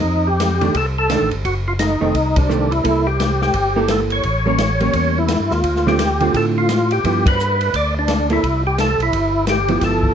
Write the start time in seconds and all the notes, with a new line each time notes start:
Already playing: D#4
0.03 F2
0.27 G4
0.40 snare, hi-hat pedal, ride
0.61 D#3 A3 D4, ride
0.74 C2 A4, kick, ride
0.98 A4
1.10 D#3 A3 D4, snare, hi-hat pedal, ride
1.21 A1
1.31 G1, ride
1.45 F#1 F#4, kick, ride
1.68 F4
1.79 D#4, snare, hi-hat pedal, ride
2.01 F1 D#3 A3 C4
2.15 C2, kick, ride
2.36 D4, kick, ride
2.49 D#3 A3 C4, hi-hat pedal
2.71 E4, ride
2.84 C2 A#3 E4 A4, kick, ride
3.07 G4
3.20 snare, hi-hat pedal, ride
3.42 G4, snare
3.54 G1, kick, ride
3.76 A#3 E4 A4
3.88 A4, snare, hi-hat pedal, ride
4.10 C#5, ride
4.23 A1, kick, ride
4.46 G3 A#3 C#4
4.58 snare, hi-hat pedal, ride
4.80 G3 A#3 C#4, ride
4.93 E2, kick, ride
5.18 E4
5.28 snare, hi-hat pedal, ride
5.40 G2
5.51 D#2 F4, snare
5.64 D2, kick, ride
5.76 snare
5.87 D3 A3 C4 F4 G4, snare
5.99 snare, hi-hat pedal, ride
6.20 D3 A3 C4 F4, ride
6.33 A2 A4, kick, ride
6.58 F4
6.69 snare, hi-hat pedal, ride
6.91 G4, ride
7.04 G2 F3 B3 E4, kick, ride
7.26 B4, kick, ride
7.40 hi-hat pedal
7.61 ride
7.74 D2 D5, kick, ride
7.99 D4
8.08 snare, hi-hat pedal, ride
8.30 A#3 E4 A4, ride
8.43 C2, kick, ride
8.67 G4
8.78 A4, snare, hi-hat pedal, ride
8.98 B1, ride
9.03 E4
9.13 G1, kick, ride
9.47 G4, snare, hi-hat pedal, ride
9.68 F3 B3 E4, ride
9.81 G1 A4, kick, snare, ride
10.03 kick